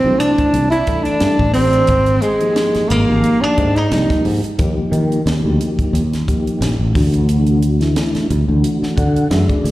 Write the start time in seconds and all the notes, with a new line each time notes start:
Already playing: C4
0.04 B1 E3 A3 D4 E4
0.19 D4, closed hi-hat
0.38 muted fretless electric bass stroke, kick, closed hi-hat
0.54 C2, closed hi-hat
0.70 E4, closed hi-hat
0.87 E3 A3 D4 A4, kick, closed hi-hat
1.03 D4, closed hi-hat
1.20 G2, snare, closed hi-hat
1.39 A1, kick
1.54 E3 A3 C4 D4 G4, snare, open hi-hat
1.73 closed hi-hat
1.87 G#1, kick, closed hi-hat
2.06 closed hi-hat
2.22 G#3, closed hi-hat
2.41 F3 A#3 D#4 G4, closed hi-hat
2.56 snare, closed hi-hat
2.75 muted fretless electric bass stroke, snare, closed hi-hat
2.89 G#1 A#3, closed hi-hat
3.08 G#1 F3 A#3 D#4 G4
3.24 closed hi-hat
3.41 D4, muted fretless electric bass stroke
3.58 G#2, kick, closed hi-hat
3.76 D#4, closed hi-hat
3.91 C2 F3 A#3 D#4 G4, snare, closed hi-hat
4.10 muted fretless electric bass stroke, kick, snare, closed hi-hat
4.25 G#2, open hi-hat
4.44 closed hi-hat
4.58 D#2 F3 A#3 D#4 G4, kick, closed hi-hat
4.92 D#3, closed hi-hat
5.12 closed hi-hat
5.26 D#2, snare, closed hi-hat
5.43 D2 F3 A#3 D#4 G4
5.61 closed hi-hat
5.79 muted fretless electric bass stroke, kick, closed hi-hat
5.93 D#2, closed hi-hat
6.13 snare, closed hi-hat
6.28 F3 A#3 D#4 G4, kick, closed hi-hat
6.47 closed hi-hat
6.61 A#1, snare, closed hi-hat
6.79 A1
6.95 D2 E3 A3 D4 F#4, kick, snare, open hi-hat
7.14 closed hi-hat
7.29 closed hi-hat
7.47 closed hi-hat
7.62 closed hi-hat
7.80 E3 A3 D4 E4, snare, closed hi-hat
7.96 snare, closed hi-hat
8.15 muted fretless electric bass stroke, snare, closed hi-hat
8.30 D2, closed hi-hat
8.48 D2 E3 A3 D4 F#4
8.64 closed hi-hat
8.83 muted fretless electric bass stroke, snare
8.96 D3 F#5, kick, closed hi-hat
9.16 closed hi-hat
9.30 F#2 E3 A3 D4 G#4 E5, snare, closed hi-hat
9.49 D5, muted fretless electric bass stroke, kick, closed hi-hat
9.64 D2, open hi-hat